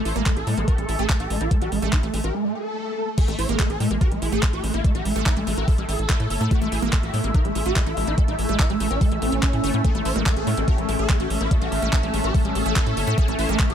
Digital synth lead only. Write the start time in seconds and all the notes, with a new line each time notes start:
0.05 C#5
0.16 A3
0.26 A3
0.37 A4
0.47 A3
0.57 A3
0.68 G4
0.78 A3
0.89 A3
0.99 A4
1.09 A3
1.20 G4
1.30 A3
1.41 F4
1.51 A3
1.62 G4
1.72 A3
1.82 A3
1.93 E4
2.03 A3
2.14 A3
2.24 G4
2.34 A3
2.45 A3
2.55 A4
3.18 A4
3.28 A3
3.39 C#5
3.49 A3
3.60 A3
3.70 A4
3.80 A3
3.91 A3
4.01 G4
4.12 A3
4.22 A3
4.32 A4
4.43 A3
4.53 G4
4.64 A3
4.74 F4
4.85 A3
4.95 G4
5.05 A3
5.16 A3
5.26 E4
5.37 A3
5.47 A3
5.57 G4
5.68 A3
5.78 A3
5.89 A4
6.51 G4
6.62 A3
6.72 A4
6.82 A3
6.93 A3
7.03 G4
7.14 A3
7.24 A3
7.35 E4
7.45 A3
7.55 A3
7.66 G4
7.76 A3
7.87 F4
7.97 A3
8.07 E4
8.18 A3
8.28 E4
8.39 A3
8.49 A3
8.60 E4
8.70 A3
8.80 A3
8.91 D4
9.01 A3
9.12 A3
9.22 C#4
9.84 A4
9.95 A3
10.05 C#5
10.16 A3
10.26 A3
10.37 A4
10.47 A3
10.57 A3
10.68 G4
10.78 A3
10.89 A3
10.99 A4
11.10 A3
11.20 G4
11.30 A3
11.41 F4
11.51 A3
11.62 G4
11.72 A3
11.82 A3
11.93 E4
12.03 A3
12.14 A3
12.24 G4
12.35 A3
12.45 A3
12.55 A4
13.18 A4
13.28 A3
13.39 C#5
13.49 A3
13.59 A3
13.70 A4